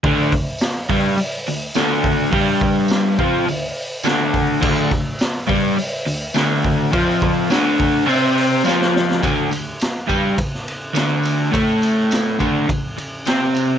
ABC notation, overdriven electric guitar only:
X:1
M:4/4
L:1/8
Q:1/4=104
K:Dm
V:1 name="Overdriven electric guitar" clef=bass
[D,,D,] D,, z [G,,G,] z D,, [D,,D,]2 | [G,,G,]3 [F,,F,] D,, z [D,,D,]2 | [D,,D,] D,, z [G,,G,] z D,, [D,,D,]2 | [F,,F,]2 [D,,D,]2 [C,C]2 [F,,F,]2 |
[D,,D,] D,, z [G,,G,] z2 [D,,D,]2 | [A,,A,]3 [D,,D,] D,, z [C,C]2 |]